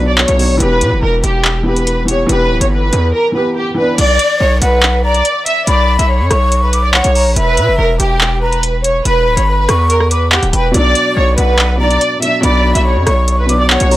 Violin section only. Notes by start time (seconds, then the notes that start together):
0.07 D5
0.18 C#5
0.60 B4
1.02 A#4
1.24 G4
1.66 B4
2.08 C#5
2.29 B4
2.61 C#5
2.71 B4
3.14 A#4
3.35 B4
3.56 G4
3.77 B4
3.98 D5
4.40 C#5
4.62 B4
5.04 D5
5.46 E5
5.67 D5
5.99 E5
6.09 C#5
6.62 B4
6.83 D5
6.94 C#5
7.36 B4
7.78 A#4
8.00 G4
8.42 B4
8.84 C#5
9.05 B4
9.37 C#5
9.48 B4
9.90 A#4
10.11 B4
10.32 G4
10.53 B4
10.74 D5
11.17 C#5
11.38 B4
11.80 D5
12.22 E5
12.43 D5
12.75 E5
12.86 C#5
13.38 B4
13.59 D5
13.70 C#5